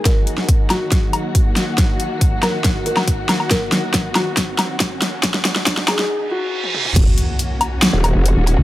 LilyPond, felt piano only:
\new Staff \with { instrumentName = "Felt piano" } { \time 4/4 \key ees \minor \tempo 4 = 139 bes'4. ges'4. r4 | r4. bes'4 bes'4. | bes'4. ges'4. r4 | r4. aes'4 ges'4. |
r1 | }